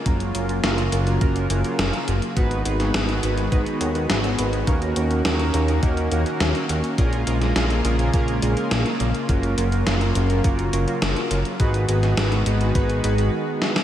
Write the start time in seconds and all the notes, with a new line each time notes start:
Already playing: A#3 F4
0.06 F#1 C#3 F#3 A#3 C#4 F4 F#4 A#4, kick, closed hi-hat
0.20 closed hi-hat
0.35 F#1 A#3 C#4 F4 F#4 A#4, closed hi-hat
0.49 A#3 C#4 F4 F#4 A#4, closed hi-hat
0.63 F#1 A#3 C#4 F4 F#4 A#4, snare, closed hi-hat
0.78 closed hi-hat
0.92 F#1 A#3 C#4 F4 F#4 A#4, closed hi-hat
1.07 A#3 C#4 F4 F#4 A#4, closed hi-hat
1.21 F#1 A#3 C#4 F4 F#4 A#4, kick, closed hi-hat
1.36 closed hi-hat
1.50 F#1 A#3 C#4 F4 F#4 A#4, closed hi-hat
1.64 A#3 C#4 F4 F#4 A#4, closed hi-hat
1.79 F#1 A#3 C#4 F4 F#4 A#4, snare, closed hi-hat
1.93 closed hi-hat
2.08 F#1 A#3 C#4 F4 F#4 A#4, closed hi-hat
2.22 closed hi-hat
2.36 G#1 D#3 G#3 B3 D#4 F#4 G#4 B4, kick, closed hi-hat
2.51 closed hi-hat
2.65 G#1 B3 D#4 F#4 G#4 B4, closed hi-hat
2.80 B3 D#4 F#4 G#4 B4, snare, closed hi-hat
2.94 G#1 B3 D#4 F#4 G#4 B4, snare, closed hi-hat
3.09 closed hi-hat
3.23 G#1 B3 D#4 F#4 G#4 B4, closed hi-hat
3.37 B3 D#4 F#4 G#4 B4, closed hi-hat
3.52 G#1 B3 D#4 F#4 G#4 B4, kick, closed hi-hat
3.66 closed hi-hat
3.81 D#2 B3 D#4 F#4 G#4 C#5, closed hi-hat
3.95 B3 D#4 F#4 G#4 B4, closed hi-hat
4.10 G#1, snare, closed hi-hat
4.24 B3 D#4 F#4 G#4 C#5, closed hi-hat
4.38 G#1 B3 D#4 F#4 G#4 B4, closed hi-hat
4.53 closed hi-hat
4.67 D#2 D#3 A#3 C#4 D#4 F#4 A#4, kick, closed hi-hat
4.82 closed hi-hat
4.96 D#2 A#3 C#4 D#4 F#4 A#4, closed hi-hat
5.11 A#3 C#4 D#4 F#4 A#4, closed hi-hat
5.25 D#2 A#3 C#4 D#4 F#4 A#4, snare, closed hi-hat
5.39 closed hi-hat
5.54 D#2 A#3 C#4 D#4 F#4 A#4, closed hi-hat
5.68 A#3 C#4 D#4 F#4 A#4, closed hi-hat
5.83 D#2 A#3 C#4 D#4 F#4 A#4, kick, closed hi-hat
5.97 closed hi-hat
6.12 D#2 A#3 C#4 D#4 F#4 A#4, closed hi-hat
6.26 A#3 C#4 D#4 F#4 A#4, closed hi-hat
6.40 D#2 A#3 C#4 D#4 F#4 A#4, snare, closed hi-hat
6.55 closed hi-hat
6.69 D#2 A#3 C#4 D#4 F#4 A#4, closed hi-hat
6.84 closed hi-hat
6.98 A#1 C#3 G#3 A#3 C#4 F4 G#4 A#4, kick, closed hi-hat
7.13 closed hi-hat
7.27 A#1 A#3 C#4 F4 G#4 A#4, closed hi-hat
7.41 A#3 C#4 F4 G#4 A#4, snare, closed hi-hat
7.56 A#1 A#3 C#4 F4 G#4 A#4, snare, closed hi-hat
7.70 closed hi-hat
7.85 A#1 A#3 C#4 F4 G#4 A#4, closed hi-hat
7.99 A#3 C#4 F4 G#4 A#4, closed hi-hat
8.13 A#1 A#3 C#4 F4 G#4 A#4, kick, closed hi-hat
8.28 closed hi-hat
8.42 A#1 A#3 C#4 F4 G#4 A#4, closed hi-hat
8.57 A#3 C#4 F4 G#4 A#4, closed hi-hat
8.71 A#1 A#3 C#4 F4 G#4 A#4, snare, closed hi-hat
8.86 closed hi-hat
9.00 A#1 A#3 C#4 F4 G#4 A#4, closed hi-hat
9.15 closed hi-hat
9.29 F#1 F#3 A#3 C#4 F4 F#4 A#4, kick, closed hi-hat
9.43 closed hi-hat
9.58 F#1 A#3 C#4 F4 F#4 A#4, closed hi-hat
9.72 A#3 C#4 F4 F#4 A#4, closed hi-hat
9.87 F#1 A#3 C#4 F4 F#4 A#4, snare, closed hi-hat
10.01 closed hi-hat
10.15 F#1 A#3 C#4 F4 F#4 A#4, closed hi-hat
10.30 A#3 C#4 F4 F#4 A#4, closed hi-hat
10.44 F#1 A#3 C#4 F4 F#4 A#4, kick, closed hi-hat
10.59 closed hi-hat
10.73 F#1 A#3 C#4 F4 F#4 A#4, closed hi-hat
10.88 A#3 C#4 F4 F#4 A#4, closed hi-hat
11.02 F#1 A#3 C#4 F4 F#4 A#4, snare, closed hi-hat
11.16 closed hi-hat
11.31 F#1 A#3 C#4 F4 F#4 A#4, closed hi-hat
11.45 closed hi-hat
11.60 G#1 D#3 G#3 B3 D#4 F#4 G#4 B4, kick, closed hi-hat
11.74 closed hi-hat
11.89 G#1 B3 D#4 F#4 G#4 B4, closed hi-hat
12.03 B3 D#4 F#4 G#4 B4, snare, closed hi-hat
12.17 G#1 B3 D#4 F#4 G#4 B4, snare, closed hi-hat
12.32 closed hi-hat
12.46 G#1 B3 D#4 F#4 G#4 B4, closed hi-hat
12.61 B3 D#4 F#4 G#4 B4, closed hi-hat
12.75 G#1 B3 D#4 F#4 G#4 B4, kick, closed hi-hat
12.90 closed hi-hat
13.04 G#1 B3 D#4 F#4 G#4 B4, closed hi-hat
13.18 B3 D#4 F#4 G#4 B4, closed hi-hat
13.62 snare
13.76 snare